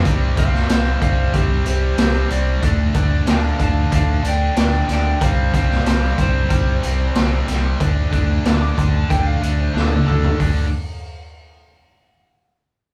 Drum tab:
HH |x-x-x-x-x-x-x-x-|x-x-x-x-x-x-x-x-|x-x-x-x-x-x-x-x-|x-x-x-x-x-x-----|
SD |---oo-------o---|----o-------o-o-|---oo-------o-o-|----o-------o---|
T1 |----------------|----------------|----------------|-------------o--|
T2 |----------------|----------------|----------------|--------------o-|
FT |----------------|----------------|----------------|---------------o|
BD |o-o---o-o-------|o-o---o-o-------|o-o---o-o-------|o-o---o-o-------|

HH |o---------------|
SD |----------------|
T1 |----------------|
T2 |----------------|
FT |----------------|
BD |o---------------|